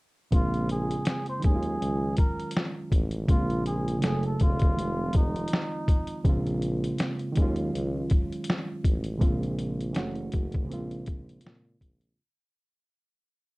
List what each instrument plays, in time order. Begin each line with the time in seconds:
0.31 tuba A#1, reed electric piano C#3 G#3 A#3 C4, muted trumpet F4, kick, closed hi-hat
0.36 reed electric piano F4
0.54 closed hi-hat
0.69 muted trumpet G#4, closed hi-hat
0.91 closed hi-hat
1.05 muted trumpet G#4, snare, closed hi-hat
1.26 muted trumpet C5, closed hi-hat
1.40 reed electric piano D#3 F#3, closed hi-hat
1.44 tuba D#2, reed electric piano G#3 C#4, muted trumpet G#4, kick
1.49 reed electric piano D#4
1.56 reed electric piano F4
1.63 closed hi-hat
1.81 tuba C#2, closed hi-hat
2.17 muted trumpet A#4, kick, closed hi-hat
2.40 closed hi-hat
2.51 closed hi-hat
2.57 snare
2.92 tuba A1, kick, closed hi-hat
3.11 closed hi-hat
3.26 tuba A#1, reed electric piano C#3 G#3 A#3 C4, kick, closed hi-hat
3.31 muted trumpet F4, reed electric piano F4
3.50 closed hi-hat
3.66 muted trumpet G#4, closed hi-hat
3.88 closed hi-hat
3.99 reed electric piano C#3 F#3 A3 C#4, closed hi-hat
4.04 tuba F#1, muted trumpet G#4, reed electric piano A4, snare
4.23 muted trumpet A4, closed hi-hat
4.40 tuba E1, muted trumpet F4, kick, closed hi-hat
4.59 kick, closed hi-hat
4.72 reed electric piano D#3 F3
4.77 tuba F1, reed electric piano G#3 C4, closed hi-hat
4.82 reed electric piano F4
5.13 tuba F1, muted trumpet D#4, kick, closed hi-hat
5.36 closed hi-hat
5.48 closed hi-hat
5.53 snare
5.88 kick, closed hi-hat
6.07 closed hi-hat
6.25 tuba A#1, reed electric piano C#3 G#3 A#3 C4, kick, closed hi-hat
6.29 reed electric piano F4
6.47 closed hi-hat
6.62 closed hi-hat
6.84 closed hi-hat
6.98 snare, closed hi-hat
7.19 closed hi-hat
7.32 reed electric piano D#3 F#3, closed hi-hat
7.37 tuba D#2, reed electric piano G#3 C#4, kick
7.42 reed electric piano F4
7.56 closed hi-hat
7.74 tuba C#2, closed hi-hat
8.10 kick, closed hi-hat
8.32 closed hi-hat
8.44 closed hi-hat
8.50 snare
8.84 tuba A1, kick, closed hi-hat
9.04 closed hi-hat
9.18 reed electric piano C3 G#3 A#3 C4, kick, closed hi-hat
9.22 tuba A#1, reed electric piano C#3 F4
9.43 closed hi-hat
9.59 closed hi-hat
9.81 closed hi-hat
9.93 tuba F#1, reed electric piano E3 F#3 A3 C#4, snare, closed hi-hat
9.98 reed electric piano F#4
10.15 closed hi-hat
10.32 tuba F#1, kick, closed hi-hat
10.52 kick, closed hi-hat
10.64 reed electric piano C#3 G#3
10.69 tuba A#1, reed electric piano A#3 C4, closed hi-hat
10.73 reed electric piano F4
10.91 closed hi-hat
11.06 tuba A#1, kick, closed hi-hat
11.29 closed hi-hat
11.41 tuba A#2, closed hi-hat
11.46 snare
11.81 tuba A#1, kick, closed hi-hat
12.01 closed hi-hat